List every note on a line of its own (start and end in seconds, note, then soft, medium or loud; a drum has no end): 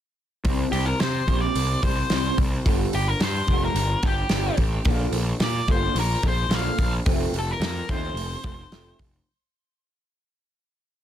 0.44 0.64 C2 medium
0.44 0.71 C3 medium
0.44 0.72 G3 medium
0.44 0.72 C4 medium
0.44 kick medium
0.44 open hi-hat medium
0.72 0.92 C2 medium
0.72 0.98 C3 medium
0.72 0.98 G3 medium
0.72 0.87 G4 medium
0.72 open hi-hat soft
0.85 1.00 A#4 medium
1.00 1.25 C3 medium
1.00 1.20 C3 medium
1.00 1.26 G3 medium
1.00 1.41 C5 medium
1.00 snare loud
1.00 open hi-hat medium
1.27 1.47 A#1 medium
1.27 1.53 C3 medium
1.27 1.53 G3 medium
1.27 1.54 C4 medium
1.27 kick medium
1.27 open hi-hat soft
1.41 1.83 D5 medium
1.54 1.75 C2 medium
1.54 1.80 C3 medium
1.54 1.80 G3 medium
1.54 open hi-hat medium
1.83 2.02 C2 medium
1.83 2.08 C3 medium
1.83 2.08 G3 medium
1.83 2.35 C5 medium
1.83 kick medium
1.83 open hi-hat medium
2.10 2.30 C2 medium
2.10 2.37 C3 medium
2.10 2.38 G3 medium
2.10 2.38 C4 medium
2.10 snare medium
2.10 open hi-hat medium
2.37 2.57 C2 medium
2.37 2.64 C3 medium
2.37 2.64 G3 medium
2.37 kick medium
2.37 open hi-hat soft
2.65 2.85 G1 loud
2.65 2.92 G2 medium
2.65 2.92 D3 medium
2.65 2.92 G3 medium
2.65 kick medium
2.65 open hi-hat medium
2.93 3.13 G1 medium
2.93 3.18 G2 medium
2.93 3.19 D3 medium
2.93 3.08 G4 medium
2.93 open hi-hat soft
3.08 3.23 A#4 medium
3.20 3.40 G2 medium
3.20 3.46 G2 medium
3.20 3.46 D3 medium
3.20 3.63 C5 loud
3.20 snare medium
3.20 open hi-hat medium
3.48 3.68 F1 medium
3.48 3.74 G2 medium
3.48 3.75 D3 medium
3.48 3.75 G3 medium
3.48 kick medium
3.48 open hi-hat soft
3.65 4.06 A#4 medium
3.74 3.94 G1 medium
3.74 4.01 G2 medium
3.74 4.01 D3 medium
3.74 open hi-hat medium
4.03 4.22 G1 medium
4.03 4.28 G2 medium
4.03 4.28 D3 medium
4.03 4.56 G4 medium
4.03 kick medium
4.03 open hi-hat soft
4.29 4.49 G1 medium
4.29 4.57 G2 medium
4.29 4.57 D3 medium
4.29 4.58 G3 medium
4.29 snare medium
4.29 open hi-hat medium
4.57 4.77 A1 medium
4.57 4.84 G2 medium
4.57 4.84 D3 medium
4.57 kick medium
4.57 open hi-hat soft
4.85 5.05 A#1 medium
4.85 5.12 A#2 medium
4.85 5.12 D3 medium
4.85 5.13 A#3 medium
4.85 kick loud
4.85 open hi-hat medium
5.12 5.32 A#1 medium
5.12 5.39 A#2 medium
5.12 5.39 D3 medium
5.12 open hi-hat soft
5.40 5.60 A#2 medium
5.40 5.66 A#2 medium
5.40 5.66 D3 medium
5.40 5.68 D5 medium
5.40 snare loud
5.40 open hi-hat medium
5.68 5.88 G1 medium
5.68 5.95 A#2 medium
5.68 5.95 D3 medium
5.68 5.95 A#3 medium
5.68 5.98 C5 medium
5.68 kick medium
5.68 open hi-hat soft
5.95 6.15 A#1 medium
5.95 6.21 A#2 medium
5.95 6.21 D3 medium
5.95 open hi-hat medium
5.99 6.24 A#4 medium
6.23 6.43 A#1 medium
6.23 6.48 A#2 medium
6.23 6.49 D3 medium
6.23 kick medium
6.23 open hi-hat medium
6.28 6.54 C5 medium
6.49 6.69 A#1 medium
6.49 6.77 A#2 medium
6.49 6.77 D3 medium
6.49 6.78 A#3 medium
6.49 snare medium
6.49 open hi-hat medium
6.55 6.92 F5 medium
6.78 6.98 A#1 medium
6.78 7.04 A#2 medium
6.78 7.04 D3 medium
6.78 kick medium
6.78 open hi-hat medium
7.06 7.26 F1 loud
7.06 7.32 F3 medium
7.06 7.32 A3 medium
7.06 7.33 C4 medium
7.06 kick loud
7.06 open hi-hat medium
7.32 7.53 F1 medium
7.32 7.59 F3 medium
7.32 7.59 A3 medium
7.32 open hi-hat soft
7.39 7.51 A4 medium
7.51 7.90 A#4 medium
7.60 7.80 F2 medium
7.60 7.86 F3 medium
7.60 7.87 A3 medium
7.60 snare medium
7.60 open hi-hat medium
7.89 8.09 D#2 medium
7.89 8.15 F3 medium
7.89 8.16 A3 medium
7.89 8.16 C4 loud
7.89 8.97 C5 medium
7.89 kick medium
7.89 open hi-hat soft
8.14 8.35 F1 medium
8.14 8.42 F3 medium
8.14 8.42 A3 medium
8.14 open hi-hat medium
8.44 8.64 F1 medium
8.44 8.70 F3 medium
8.44 8.70 A3 medium
8.44 kick medium
8.44 open hi-hat soft
8.71 8.91 F1 medium
8.71 8.98 F3 medium
8.71 8.99 A3 medium
8.71 8.99 C4 medium
8.71 snare medium
8.71 open hi-hat medium
8.99 9.19 F1 medium
8.99 9.25 F3 medium
8.99 9.25 A3 medium
8.99 kick medium
8.99 open hi-hat soft